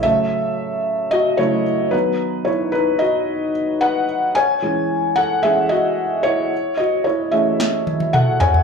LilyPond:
<<
  \new Staff \with { instrumentName = "Felt piano" } { \time 4/4 \key cis \minor \tempo 4 = 111 <a' e''>2 <fis' dis''>8 <e' cis''>4 <dis' b'>8~ | <dis' b'>8 <e' cis''>8 <dis' b'>8 <fis' dis''>4 r8 <b' fis''>4 | <cis'' gis''>4. <a' fis''>8 <gis' e''>8 <fis' dis''>4 <e' cis''>8~ | <e' cis''>8 <fis' dis''>8 <e' cis''>8 <gis' e''>4 r8 <a' fis''>8 <cis'' gis''>8 | }
  \new Staff \with { instrumentName = "Felt piano" } { \clef bass \time 4/4 \key cis \minor <cis fis a>2~ <cis fis a>8 <cis fis a>8 r8 <dis fis b>8~ | <dis fis b>2.~ <dis fis b>8 r8 | r8 <e gis cis'>4. <e gis cis'>8 r4. | r4. <e a cis'>8 r2 | }
  \new DrumStaff \with { instrumentName = "Drums" } \drummode { \time 4/4 r4 r4 r4 r4 | r4 r4 r4 r4 | r4 r4 r4 r4 | r4 r4 sn8 tommh16 tommh16 toml8 tomfh16 tomfh16 | }
>>